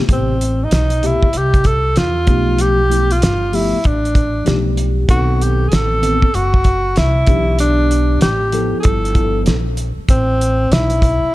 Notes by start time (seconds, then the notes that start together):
0.08 A1 C3 A3 B3 C4 G4, kick, closed hi-hat
0.41 closed hi-hat
0.64 D#4
0.71 B1, snare, closed hi-hat
0.90 closed hi-hat
1.02 C3 A3 B3 E4 G4, closed hi-hat
1.23 kick
1.33 C2, closed hi-hat
1.37 G4
1.54 kick, closed hi-hat
1.64 A4, kick, closed hi-hat
1.96 E2 F4, snare, closed hi-hat
2.26 B1 F3 A3 B3 G4, kick, closed hi-hat
2.59 G4, closed hi-hat
2.89 F3 A3 B3 E4, closed hi-hat
3.11 F4, closed hi-hat
3.22 G1, snare, closed hi-hat
3.52 F3 A3 B3 E4 G4, open hi-hat
3.73 muted upright bass stroke
3.84 A1 D4, kick, closed hi-hat
4.05 closed hi-hat
4.15 kick, closed hi-hat
4.44 B1 F3 A3 B3 G4, snare, closed hi-hat
4.77 closed hi-hat
5.08 B1 D#3 B3 C4 F#4 A4, kick, closed hi-hat
5.42 G4, closed hi-hat
5.68 A1 G#4, closed hi-hat
5.73 A4, snare
6.01 D#3 B3 C4 A4, closed hi-hat
6.22 muted upright bass stroke, kick
6.34 F#1 F#4, closed hi-hat
6.54 kick
6.64 kick, closed hi-hat
6.96 C2 E4, snare, closed hi-hat
7.27 B1 E3 B3 D4 G4, kick, closed hi-hat
7.59 D4, closed hi-hat
7.91 closed hi-hat
8.21 A1 G4, snare, closed hi-hat
8.52 F3 B3 E4 A4, closed hi-hat
8.73 muted upright bass stroke
8.80 G#4 A4, closed hi-hat
8.85 G1, kick
9.05 closed hi-hat
9.14 F3 B3 E4 A4, kick, closed hi-hat
9.46 A#1, snare, closed hi-hat
9.77 closed hi-hat
9.98 muted upright bass stroke
10.09 A1 C4, kick, closed hi-hat
10.41 closed hi-hat
10.71 B1 E4, snare, closed hi-hat
10.90 closed hi-hat
11.02 kick, closed hi-hat
11.23 muted upright bass stroke